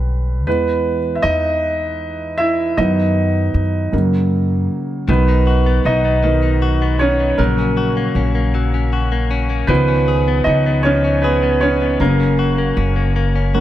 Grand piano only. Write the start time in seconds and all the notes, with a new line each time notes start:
Already playing: D3 G3 B3 B4
0.47 E3 G#3 B3 B4
1.15 E5
1.22 D#4 D#5
2.38 E4 E5
2.77 D#3 F#3 B3 D#4 D#5
3.92 C#3 F#3 A#3
5.08 D#3 F#3 B3 B4
5.86 D#4 D#5
6.24 D#3 F#3 B3
6.99 C#4 C#5
7.38 C#3 F#3 A#3 A#4
9.67 D#3 F3 B3 B4
10.44 D#4 D#5
10.83 C#4 C#5
11.22 B3 B4
11.61 C#4 C#5
12.00 C#3 F#3 A#3 A#4
13.54 C#3 F#3 A#3